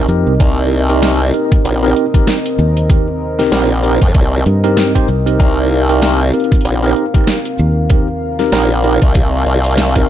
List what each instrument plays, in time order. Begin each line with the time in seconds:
Already playing: analog synth pad C4 A#4 D#5
0.08 fingered electric bass F2, tine electric piano C4 D#4 G4 A#4, shaker
0.27 fingered electric bass C2
0.40 wobble bass C2, tine electric piano C4 D#4 G4 A#4, kick, closed hi-hat
0.89 tine electric piano C4 D#4 G4 A#4, closed hi-hat
1.02 tine electric piano C4 D#4 G4 A#4, snare, closed hi-hat
1.34 tine electric piano C4 D#4 G4 A#4, closed hi-hat, shaker
1.52 kick, cross-stick, closed hi-hat
1.65 wobble bass A#1, closed hi-hat
1.83 tine electric piano C4 D#4 G4 A#4
1.96 closed hi-hat
2.14 tine electric piano C4 D#4 G4 A#4, kick, cross-stick, closed hi-hat
2.27 snare, closed hi-hat
2.46 closed hi-hat
2.59 fingered electric bass D#2, shaker
2.77 closed hi-hat
2.90 tine electric piano C4 D#4 G4 A#4, kick, closed hi-hat
3.39 tine electric piano C4 D#4 G4 A#4, snare, closed hi-hat
3.52 wobble bass A#1, tine electric piano C4 D#4 G4 A#4, snare, closed hi-hat
3.83 tine electric piano C4 D#4 G4 A#4, closed hi-hat, shaker
4.02 wobble bass F2, kick, cross-stick, closed hi-hat
4.14 wobble bass C2, kick, closed hi-hat
4.46 fingered electric bass G2, closed hi-hat
4.64 tine electric piano C4 D#4 G4 A#4, closed hi-hat
4.77 snare, closed hi-hat
4.95 tine electric piano C4 D#4 G4 C5, kick, cross-stick, closed hi-hat
5.08 fingered electric bass C2, shaker
5.26 tine electric piano C4 D#4 G4 A#4, closed hi-hat
5.39 wobble bass C2, tine electric piano C4 D#4 G4 A#4, analog synth pad F5, kick, closed hi-hat
5.89 tine electric piano C4 D#4 G4 A#4, closed hi-hat
6.02 tine electric piano C4 D#4 G4 A#4, snare, closed hi-hat
6.33 tine electric piano C4 D#4 G4 A#4, closed hi-hat, shaker
6.40 closed hi-hat
6.44 closed hi-hat
6.52 kick, cross-stick, closed hi-hat
6.55 closed hi-hat
6.61 closed hi-hat
6.65 wobble bass A#1, closed hi-hat
6.83 tine electric piano C4 D#4 G4 A#4
6.96 closed hi-hat
7.14 tine electric piano C4 D#4 G4 A#4, kick, cross-stick, closed hi-hat
7.18 cross-stick
7.21 cross-stick
7.24 cross-stick, snare, closed hi-hat
7.45 closed hi-hat
7.58 fingered electric bass D#2, shaker
7.90 tine electric piano C4 D#4 G4 A#4, kick, closed hi-hat
8.39 tine electric piano C4 D#4 G4 A#4, snare, closed hi-hat
8.52 wobble bass A#1, tine electric piano C4 D#4 G4 A#4, snare, closed hi-hat
8.84 tine electric piano C4 D#4 G4 A#4, closed hi-hat, shaker
9.02 wobble bass C2, kick, cross-stick, closed hi-hat
9.15 kick, closed hi-hat
9.46 wobble bass C2, closed hi-hat
9.64 closed hi-hat
9.66 closed hi-hat
9.71 closed hi-hat
9.73 closed hi-hat
9.75 snare, closed hi-hat
9.77 closed hi-hat
9.95 tine electric piano C4 D#4 G4 A#4, kick, closed hi-hat